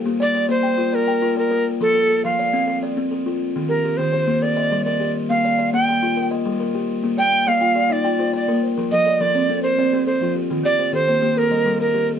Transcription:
X:1
M:12/8
L:1/8
Q:3/8=138
K:Bb
V:1 name="Native American-style wooden flute"
z d2 c3 B3 B2 z | A3 f4 z4 z | z B2 c3 d3 d2 z | f3 g4 z4 z |
z g2 f3 d3 d2 z | z e2 d3 c3 c2 z | z d2 c3 B3 B2 z |]
V:2 name="Kalimba"
z d d d g2 d g2 d3 | z A A A d2 A d2 A3 | z G G G c2 B e2 B3 | z d d d g2 B e2 B3 |
z d2 d g2 d g2 d3 | z A A A d2 A d2 A3 | z G G G c2 B e2 B3 |]
V:3 name="Kalimba"
B,2 z B,2 F2 z F2 B2 | F,2 z F,2 C2 z C2 F2 | E,2 z E,2 B, z2 G,2 G2 | B,2 z B,2 F z2 G,2 G2 |
B,2 z B,2 F2 z F2 B2 | F,2 z F,2 C2 z C2 F2 | E,2 z E,2 B, z2 G,2 G2 |]
V:4 name="Marimba"
[GA]2 z8 z2 | z12 | z12 | z12 |
z2 g e2 d E2 c d2 c | B2 d B2 A B2 G A2 G | F2 c A2 G A2 A B2 A |]
V:5 name="Marimba"
z12 | z12 | z12 | z12 |
z B,2 z F2 z F2 z B,2 | z F,2 z C2 z C2 z F,2 | z E,2 z B,2 z G,2 z G,2 |]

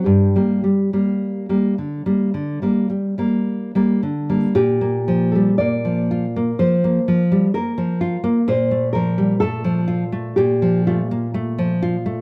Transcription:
X:1
M:4/4
L:1/16
Q:1/4=61
K:Gm
V:1 name="Nylon-string guitar"
G12- G2 z2 | [K:Bb] G3 A d4 c4 B4 | c2 B2 A4 G2 F6 |]
V:2 name="Nylon-string guitar" clef=bass
G,, [G,B,] G, [G,B,]2 [G,B,] D, [G,B,] D, [G,B,] G, [G,B,]2 [G,B,] D, [G,B,] | [K:Bb] B,, B, F, G, B, F, F B, F, B, F, G, B, F, F B, | B,, A, F, G, A, F, F A, B,, F, A, B, A, F, F A, |]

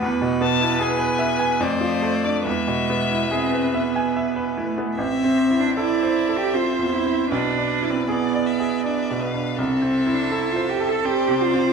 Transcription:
X:1
M:3/4
L:1/16
Q:1/4=78
K:Am
V:1 name="Violin"
z2 a2 ^g4 c3 d | e8 z4 | e12 | d4 d4 e2 f2 |
e8 d4 |]
V:2 name="Violin"
B8 d4 | B8- B3 z | e4 d4 c4 | B4 d2 e2 d2 B2 |
A8 c4 |]
V:3 name="Cello"
B,8 A,4 | ^G,4 C2 B,4 A,2 | C3 D E3 G F2 E2 | D3 C B,6 z2 |
C3 D E F G A G2 F2 |]
V:4 name="Grand piano"
E,, B,, B, E ^G B e ^g F,, F, A, D | E,, B,, B, E ^G B e ^g e B E B, | (3A,,,2 C2 E2 (3A2 c2 A2 (3C2 E,,2 C2 | (3B,,,2 D2 E2 (3^G2 d2 G2 (3D2 B,,2 D2 |
(3C,,2 C2 E2 (3A2 c2 A2 (3C2 C,2 C2 |]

